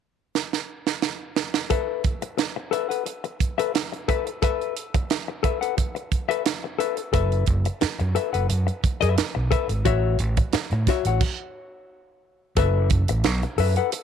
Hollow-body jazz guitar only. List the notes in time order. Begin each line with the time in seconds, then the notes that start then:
1.70 A4 B4 E5
2.22 muted hollow-body jazz guitar stroke
2.38 muted hollow-body jazz guitar stroke
2.56 muted hollow-body jazz guitar stroke
2.71 A4 B4 E5
2.89 A4 B4 F#5
3.06 muted hollow-body jazz guitar stroke
3.24 muted hollow-body jazz guitar stroke
3.58 A4 B4 E5
3.74 muted hollow-body jazz guitar stroke
3.92 muted hollow-body jazz guitar stroke
4.08 A4 B4 E5
4.27 muted hollow-body jazz guitar stroke
4.42 A4 B4 E5
4.95 muted hollow-body jazz guitar stroke
5.11 muted hollow-body jazz guitar stroke
5.28 muted hollow-body jazz guitar stroke
5.43 A4 B4 E5
5.61 A4 B4 F#5
5.77 muted hollow-body jazz guitar stroke
5.95 muted hollow-body jazz guitar stroke
6.29 A4 B4 E5
6.46 muted hollow-body jazz guitar stroke
6.64 muted hollow-body jazz guitar stroke
6.79 A4 B4 E5
6.97 muted hollow-body jazz guitar stroke
7.13 A4 B4 E5
7.66 muted hollow-body jazz guitar stroke
7.81 muted hollow-body jazz guitar stroke
7.99 muted hollow-body jazz guitar stroke
8.15 A4 B4 E5
8.33 A4 B4 F#5
8.49 muted hollow-body jazz guitar stroke
8.67 muted hollow-body jazz guitar stroke
9.01 A4 B4 E5
9.18 muted hollow-body jazz guitar stroke
9.35 muted hollow-body jazz guitar stroke
9.51 A4 B4 E5
9.69 muted hollow-body jazz guitar stroke
9.85 F#4 C#5 E5
10.38 muted hollow-body jazz guitar stroke
10.54 muted hollow-body jazz guitar stroke
10.73 muted hollow-body jazz guitar stroke
10.88 F#4 C#5 E5
11.07 F#4 C#5 F#5
12.57 A4 B4 E5
13.09 muted hollow-body jazz guitar stroke
13.25 muted hollow-body jazz guitar stroke
13.43 muted hollow-body jazz guitar stroke
13.58 A4 B4 E5
13.77 A4 B4 F#5
13.93 muted hollow-body jazz guitar stroke